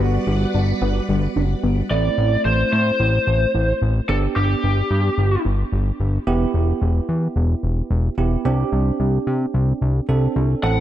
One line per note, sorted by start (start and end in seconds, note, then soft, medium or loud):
0.00 0.19 G1 loud
0.00 1.87 G3 medium
0.00 0.15 B3 medium
0.00 1.87 B3 medium
0.00 1.87 F#4 medium
0.00 1.89 B4 medium
0.00 1.89 D5 medium
0.00 1.89 F#5 medium
0.27 0.46 G1 loud
0.27 0.43 G3 medium
0.54 0.73 G1 loud
0.54 0.70 D4 medium
0.82 1.01 G1 loud
0.82 0.97 B3 medium
1.09 1.28 G1 loud
1.09 1.24 G3 medium
1.36 1.55 F#1 medium
1.36 1.52 D4 medium
1.63 1.83 G1 loud
1.63 1.79 B3 medium
1.91 2.10 A1 loud
1.91 4.05 A3 medium
1.91 4.05 C4 medium
1.91 4.05 E4 medium
1.91 2.41 D5 loud
2.18 2.37 A1 loud
2.45 2.64 A1 loud
2.45 2.71 C5 medium
2.72 2.92 A2 loud
2.72 3.78 C5 medium
3.00 3.19 A1 loud
3.27 3.46 A1 loud
3.54 3.74 A1 loud
3.82 4.01 A1 loud
4.09 4.28 G1 loud
4.09 6.23 B3 medium
4.09 6.23 D4 medium
4.09 6.23 G4 medium
4.09 4.16 A4 loud
4.36 4.55 G1 loud
4.36 5.41 G4 loud
4.63 4.83 G1 loud
4.91 5.10 G2 loud
5.18 5.37 G1 loud
5.45 5.64 G1 loud
5.72 5.92 G1 loud
6.00 6.19 G1 loud
6.27 6.46 E1 loud
6.27 8.14 B3 medium
6.27 8.14 E4 medium
6.27 8.14 G4 medium
6.54 6.73 E1 loud
6.81 7.01 E1 loud
7.09 7.28 E2 loud
7.36 7.55 E1 loud
7.63 7.82 E1 medium
7.91 8.10 E1 loud
8.18 8.37 E1 loud
8.18 8.45 B3 medium
8.18 8.45 E4 medium
8.18 8.44 G4 medium
8.45 8.64 C2 loud
8.45 10.06 C4 medium
8.45 10.06 D4 medium
8.45 10.06 G4 medium
8.72 8.92 C2 loud
9.00 9.19 C2 loud
9.27 9.46 C3 medium
9.54 9.73 C2 loud
9.81 10.01 C2 medium
10.09 10.28 C2 loud
10.09 10.62 C4 medium
10.09 10.63 D4 medium
10.09 10.62 A4 medium
10.36 10.55 C2 loud
10.63 10.80 A1 loud
10.63 10.80 C3 medium
10.63 10.80 E3 medium
10.63 10.80 A3 medium
10.63 10.80 C4 medium
10.63 10.80 E4 medium
10.63 10.80 A4 medium
10.63 10.80 F#5 loud